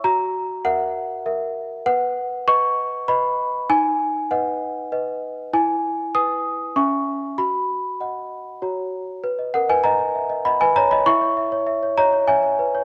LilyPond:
\new Staff \with { instrumentName = "Celesta" } { \time 3/4 \key b \major \tempo 4 = 98 << { ais''4 fis''4. r8 | fis''4 cis'''4 b''4 | gis''4 fis''4. r8 | gis''4 dis'''4 cis'''4 |
b''2 r4 | r8 <ais' fis''>16 <b' gis''>16 <dis'' ais''>4 <dis'' b''>16 <b' gis''>16 <cis'' ais''>16 <dis'' b''>16 | <e'' cis'''>4. <cis'' ais''>8 <cis'' gis''>4 | } \\ { fis'4 <ais' e''>4 <ais' e''>4 | b'4 <b' dis''>4 <b' dis''>4 | dis'4 <b' dis''>4 <b' dis''>4 | e'4 <b' gis''>4 <cis' e'' gis''>4 |
fis'4 <dis'' fis''>4 <fis' cis'' ais''>4 | b'16 dis''8 dis''16 fis''16 dis''16 e''16 dis''16 fis''16 dis''8 r16 | e'16 cis''16 e''16 cis''16 e''16 cis''16 dis''16 cis''16 e''16 cis''16 b'16 cis''16 | } >> }